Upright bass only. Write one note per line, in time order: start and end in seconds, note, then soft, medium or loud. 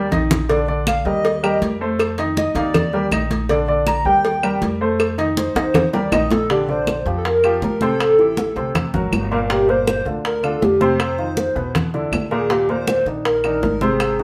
0.11 1.00 A#1 medium
1.05 1.58 D#2 medium
1.61 2.50 F2 medium
2.55 3.07 D#2 loud
3.11 3.99 A#1 medium
4.05 4.58 D#2 medium
4.61 5.50 F2 medium
5.55 6.08 D#2 medium
6.11 7.00 A#1 medium
7.06 7.58 F2 medium
7.62 8.50 A1 medium
8.56 8.91 D2 medium
8.93 9.11 G#1 medium
9.12 10.00 G1 medium
10.05 10.58 D2 medium
10.62 11.50 F2 medium
11.56 12.08 E2 medium
12.12 13.00 D#2 medium
13.06 13.58 A#1 medium
13.62 14.23 G#1 medium